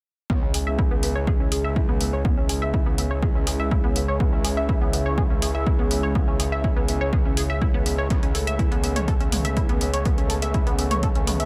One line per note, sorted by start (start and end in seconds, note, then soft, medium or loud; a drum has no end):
0.30 8.08 C#2 medium
0.30 8.06 C#3 medium
0.30 8.06 G#3 medium
0.30 0.42 B3 medium
0.30 8.06 C#4 medium
0.30 8.06 E4 medium
0.30 kick loud
0.42 0.52 C#4 medium
0.54 0.66 G#4 medium
0.54 open hi-hat medium
0.67 0.78 E5 medium
0.79 0.89 E4 medium
0.79 kick loud
0.91 1.01 B3 loud
1.03 1.13 B3 medium
1.03 open hi-hat medium
1.16 1.27 C#5 medium
1.27 1.33 G#4 medium
1.27 kick loud
1.40 1.49 C#4 medium
1.52 1.64 G#4 medium
1.52 open hi-hat loud
1.64 1.76 E5 medium
1.76 1.86 E4 medium
1.76 kick loud
1.89 1.98 B3 medium
2.01 2.11 B3 medium
2.01 open hi-hat loud
2.13 2.23 C#5 medium
2.25 2.37 B3 medium
2.25 kick loud
2.37 2.47 C#4 medium
2.49 2.61 G#4 medium
2.49 open hi-hat loud
2.62 2.73 E5 medium
2.74 2.84 E4 medium
2.74 kick loud
2.86 2.96 B3 medium
2.98 3.08 B3 medium
2.98 open hi-hat loud
3.11 3.22 C#5 medium
3.23 3.29 G#4 medium
3.23 kick loud
3.35 3.45 C#4 medium
3.47 3.59 G#4 medium
3.47 open hi-hat loud
3.60 3.71 E5 medium
3.71 3.81 E4 medium
3.71 kick loud
3.84 3.93 B3 medium
3.96 4.06 B3 medium
3.96 open hi-hat loud
4.08 4.18 C#5 medium
4.20 4.32 B3 medium
4.20 kick loud
4.33 4.42 C#4 medium
4.45 4.56 G#4 medium
4.45 open hi-hat loud
4.57 4.68 E5 medium
4.69 4.79 E4 medium
4.69 kick loud
4.81 4.91 B3 loud
4.93 5.03 B3 medium
4.93 open hi-hat loud
5.06 5.17 C#5 medium
5.18 5.24 G#4 medium
5.18 kick loud
5.30 5.40 C#4 medium
5.42 5.54 G#4 medium
5.42 open hi-hat loud
5.55 5.66 E5 medium
5.66 5.76 E4 medium
5.66 kick loud
5.79 5.88 B3 medium
5.91 6.01 B3 medium
5.91 open hi-hat loud
6.03 6.13 C#5 medium
6.15 6.27 B3 medium
6.15 kick loud
6.28 6.37 C#4 medium
6.40 6.52 G#4 medium
6.40 open hi-hat loud
6.52 6.63 E5 medium
6.64 6.74 E4 medium
6.64 kick loud
6.76 6.86 B3 loud
6.88 6.98 B3 medium
6.88 open hi-hat loud
7.01 7.12 C#5 medium
7.13 7.19 G#4 medium
7.13 kick loud
7.25 7.35 C#4 medium
7.37 7.49 G#4 medium
7.37 open hi-hat loud
7.50 7.61 E5 medium
7.62 7.72 E4 medium
7.62 kick loud
7.74 7.84 B3 medium
7.86 7.96 B3 medium
7.86 open hi-hat loud
7.98 8.08 C#5 medium
8.10 11.45 C#2 medium
8.10 11.45 A3 medium
8.10 8.22 B3 medium
8.10 11.45 B3 medium
8.10 11.45 C#4 medium
8.10 kick loud
8.10 closed hi-hat soft
8.23 8.32 C#4 medium
8.23 closed hi-hat soft
8.35 8.47 A4 medium
8.35 open hi-hat medium
8.47 8.59 E5 medium
8.47 closed hi-hat medium
8.59 8.69 E4 medium
8.59 kick loud
8.59 closed hi-hat soft
8.71 8.81 B3 medium
8.71 closed hi-hat soft
8.83 8.93 B3 medium
8.83 open hi-hat medium
8.96 9.07 C#5 medium
8.96 closed hi-hat medium
8.96 mid tom medium
9.08 9.14 A4 medium
9.08 kick loud
9.08 closed hi-hat soft
9.20 9.30 C#4 medium
9.20 closed hi-hat soft
9.32 9.42 B3 medium
9.32 mid tom medium
9.32 open hi-hat loud
9.45 9.56 E5 medium
9.45 closed hi-hat medium
9.57 9.67 E4 medium
9.57 kick loud
9.57 closed hi-hat medium
9.69 9.79 B3 loud
9.69 closed hi-hat soft
9.81 9.91 B3 medium
9.81 open hi-hat loud
9.94 10.03 C#5 medium
9.94 closed hi-hat medium
10.05 10.17 B3 medium
10.05 kick loud
10.05 closed hi-hat medium
10.18 10.28 C#4 medium
10.18 closed hi-hat soft
10.30 10.42 A4 medium
10.30 open hi-hat medium
10.42 10.54 E5 medium
10.42 closed hi-hat medium
10.54 10.64 E4 medium
10.54 kick loud
10.54 closed hi-hat medium
10.67 10.76 B3 loud
10.67 closed hi-hat soft
10.79 10.89 B3 medium
10.79 open hi-hat medium
10.91 11.02 C#5 medium
10.91 closed hi-hat medium
10.91 mid tom medium
11.03 11.09 A4 medium
11.03 kick loud
11.03 closed hi-hat soft
11.15 11.25 C#4 medium
11.15 closed hi-hat soft
11.27 11.37 B3 medium
11.27 mid tom medium
11.27 open hi-hat loud
11.40 11.45 E5 medium
11.40 closed hi-hat medium